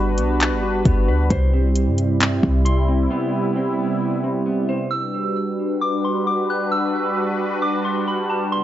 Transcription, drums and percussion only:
0, 0, Header, 1, 2, 480
1, 0, Start_track
1, 0, Key_signature, 1, "major"
1, 0, Tempo, 451128
1, 1390, Time_signature, 4, 2, 24, 8
1, 9190, End_track
2, 0, Start_track
2, 0, Title_t, "Drums"
2, 189, Note_on_c, 9, 42, 69
2, 295, Note_off_c, 9, 42, 0
2, 432, Note_on_c, 9, 42, 75
2, 440, Note_on_c, 9, 39, 110
2, 538, Note_off_c, 9, 42, 0
2, 546, Note_off_c, 9, 39, 0
2, 909, Note_on_c, 9, 36, 91
2, 909, Note_on_c, 9, 42, 70
2, 1015, Note_off_c, 9, 42, 0
2, 1016, Note_off_c, 9, 36, 0
2, 1388, Note_on_c, 9, 42, 68
2, 1389, Note_on_c, 9, 36, 118
2, 1494, Note_off_c, 9, 42, 0
2, 1495, Note_off_c, 9, 36, 0
2, 1867, Note_on_c, 9, 42, 83
2, 1974, Note_off_c, 9, 42, 0
2, 2107, Note_on_c, 9, 42, 67
2, 2213, Note_off_c, 9, 42, 0
2, 2350, Note_on_c, 9, 42, 79
2, 2358, Note_on_c, 9, 39, 107
2, 2457, Note_off_c, 9, 42, 0
2, 2464, Note_off_c, 9, 39, 0
2, 2588, Note_on_c, 9, 36, 92
2, 2695, Note_off_c, 9, 36, 0
2, 2828, Note_on_c, 9, 42, 69
2, 2935, Note_off_c, 9, 42, 0
2, 9190, End_track
0, 0, End_of_file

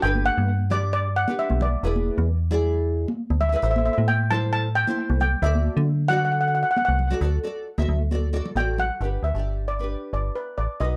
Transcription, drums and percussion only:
0, 0, Header, 1, 2, 480
1, 0, Start_track
1, 0, Key_signature, 1, "major"
1, 0, Tempo, 448766
1, 37, Time_signature, 4, 2, 24, 8
1, 11729, End_track
2, 0, Start_track
2, 0, Title_t, "Drums"
2, 161, Note_on_c, 9, 63, 64
2, 268, Note_off_c, 9, 63, 0
2, 405, Note_on_c, 9, 63, 59
2, 512, Note_off_c, 9, 63, 0
2, 757, Note_on_c, 9, 64, 80
2, 863, Note_off_c, 9, 64, 0
2, 1366, Note_on_c, 9, 63, 79
2, 1473, Note_off_c, 9, 63, 0
2, 1601, Note_on_c, 9, 63, 70
2, 1708, Note_off_c, 9, 63, 0
2, 1720, Note_on_c, 9, 64, 86
2, 1827, Note_off_c, 9, 64, 0
2, 2094, Note_on_c, 9, 63, 81
2, 2201, Note_off_c, 9, 63, 0
2, 2334, Note_on_c, 9, 63, 78
2, 2441, Note_off_c, 9, 63, 0
2, 2683, Note_on_c, 9, 64, 89
2, 2790, Note_off_c, 9, 64, 0
2, 3297, Note_on_c, 9, 63, 87
2, 3404, Note_off_c, 9, 63, 0
2, 3533, Note_on_c, 9, 63, 68
2, 3640, Note_off_c, 9, 63, 0
2, 3649, Note_on_c, 9, 64, 71
2, 3756, Note_off_c, 9, 64, 0
2, 4021, Note_on_c, 9, 63, 86
2, 4128, Note_off_c, 9, 63, 0
2, 4261, Note_on_c, 9, 63, 73
2, 4368, Note_off_c, 9, 63, 0
2, 4608, Note_on_c, 9, 64, 89
2, 4715, Note_off_c, 9, 64, 0
2, 5214, Note_on_c, 9, 63, 75
2, 5321, Note_off_c, 9, 63, 0
2, 5450, Note_on_c, 9, 63, 62
2, 5557, Note_off_c, 9, 63, 0
2, 5566, Note_on_c, 9, 64, 74
2, 5673, Note_off_c, 9, 64, 0
2, 5936, Note_on_c, 9, 63, 78
2, 6043, Note_off_c, 9, 63, 0
2, 6176, Note_on_c, 9, 63, 67
2, 6176, Note_on_c, 9, 64, 69
2, 6283, Note_off_c, 9, 63, 0
2, 6283, Note_off_c, 9, 64, 0
2, 6521, Note_on_c, 9, 64, 76
2, 6628, Note_off_c, 9, 64, 0
2, 7236, Note_on_c, 9, 63, 69
2, 7343, Note_off_c, 9, 63, 0
2, 7367, Note_on_c, 9, 63, 55
2, 7474, Note_off_c, 9, 63, 0
2, 7476, Note_on_c, 9, 64, 60
2, 7583, Note_off_c, 9, 64, 0
2, 7604, Note_on_c, 9, 64, 74
2, 7711, Note_off_c, 9, 64, 0
2, 8324, Note_on_c, 9, 63, 71
2, 8431, Note_off_c, 9, 63, 0
2, 8431, Note_on_c, 9, 64, 79
2, 8538, Note_off_c, 9, 64, 0
2, 8675, Note_on_c, 9, 63, 67
2, 8782, Note_off_c, 9, 63, 0
2, 9043, Note_on_c, 9, 64, 66
2, 9150, Note_off_c, 9, 64, 0
2, 9156, Note_on_c, 9, 63, 74
2, 9263, Note_off_c, 9, 63, 0
2, 9395, Note_on_c, 9, 64, 75
2, 9502, Note_off_c, 9, 64, 0
2, 11729, End_track
0, 0, End_of_file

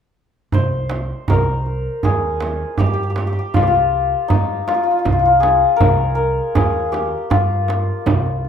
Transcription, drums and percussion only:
0, 0, Header, 1, 3, 480
1, 0, Start_track
1, 0, Tempo, 751880
1, 344, Time_signature, 3, 2, 24, 8
1, 5418, End_track
2, 0, Start_track
2, 0, Title_t, "Frame drum"
2, 347, Note_on_c, 9, 64, 70
2, 411, Note_off_c, 9, 64, 0
2, 582, Note_on_c, 9, 64, 58
2, 646, Note_off_c, 9, 64, 0
2, 828, Note_on_c, 9, 64, 81
2, 892, Note_off_c, 9, 64, 0
2, 1308, Note_on_c, 9, 64, 74
2, 1372, Note_off_c, 9, 64, 0
2, 1547, Note_on_c, 9, 64, 62
2, 1611, Note_off_c, 9, 64, 0
2, 1790, Note_on_c, 9, 64, 73
2, 1854, Note_off_c, 9, 64, 0
2, 2028, Note_on_c, 9, 64, 60
2, 2092, Note_off_c, 9, 64, 0
2, 2276, Note_on_c, 9, 64, 81
2, 2340, Note_off_c, 9, 64, 0
2, 2746, Note_on_c, 9, 64, 75
2, 2810, Note_off_c, 9, 64, 0
2, 2986, Note_on_c, 9, 64, 60
2, 3050, Note_off_c, 9, 64, 0
2, 3225, Note_on_c, 9, 64, 74
2, 3289, Note_off_c, 9, 64, 0
2, 3469, Note_on_c, 9, 64, 55
2, 3532, Note_off_c, 9, 64, 0
2, 3706, Note_on_c, 9, 64, 79
2, 3770, Note_off_c, 9, 64, 0
2, 4191, Note_on_c, 9, 64, 77
2, 4255, Note_off_c, 9, 64, 0
2, 4423, Note_on_c, 9, 64, 58
2, 4487, Note_off_c, 9, 64, 0
2, 4666, Note_on_c, 9, 64, 74
2, 4730, Note_off_c, 9, 64, 0
2, 4905, Note_on_c, 9, 64, 56
2, 4969, Note_off_c, 9, 64, 0
2, 5148, Note_on_c, 9, 64, 81
2, 5211, Note_off_c, 9, 64, 0
2, 5418, End_track
3, 0, Start_track
3, 0, Title_t, "Tombak"
3, 334, Note_on_c, 9, 64, 72
3, 398, Note_off_c, 9, 64, 0
3, 571, Note_on_c, 9, 63, 65
3, 635, Note_off_c, 9, 63, 0
3, 817, Note_on_c, 9, 64, 77
3, 880, Note_off_c, 9, 64, 0
3, 1059, Note_on_c, 9, 62, 25
3, 1123, Note_off_c, 9, 62, 0
3, 1297, Note_on_c, 9, 64, 70
3, 1361, Note_off_c, 9, 64, 0
3, 1535, Note_on_c, 9, 63, 60
3, 1599, Note_off_c, 9, 63, 0
3, 1772, Note_on_c, 9, 64, 74
3, 1836, Note_off_c, 9, 64, 0
3, 2016, Note_on_c, 9, 63, 59
3, 2080, Note_off_c, 9, 63, 0
3, 2262, Note_on_c, 9, 64, 78
3, 2326, Note_off_c, 9, 64, 0
3, 2746, Note_on_c, 9, 64, 77
3, 2810, Note_off_c, 9, 64, 0
3, 2992, Note_on_c, 9, 63, 57
3, 3055, Note_off_c, 9, 63, 0
3, 3229, Note_on_c, 9, 64, 77
3, 3293, Note_off_c, 9, 64, 0
3, 3468, Note_on_c, 9, 63, 59
3, 3531, Note_off_c, 9, 63, 0
3, 3706, Note_on_c, 9, 64, 80
3, 3770, Note_off_c, 9, 64, 0
3, 3949, Note_on_c, 9, 62, 27
3, 4013, Note_off_c, 9, 62, 0
3, 4184, Note_on_c, 9, 64, 87
3, 4247, Note_off_c, 9, 64, 0
3, 4432, Note_on_c, 9, 63, 57
3, 4496, Note_off_c, 9, 63, 0
3, 4667, Note_on_c, 9, 64, 91
3, 4731, Note_off_c, 9, 64, 0
3, 4916, Note_on_c, 9, 63, 60
3, 4980, Note_off_c, 9, 63, 0
3, 5152, Note_on_c, 9, 64, 85
3, 5216, Note_off_c, 9, 64, 0
3, 5269, Note_on_c, 9, 62, 24
3, 5333, Note_off_c, 9, 62, 0
3, 5393, Note_on_c, 9, 62, 28
3, 5418, Note_off_c, 9, 62, 0
3, 5418, End_track
0, 0, End_of_file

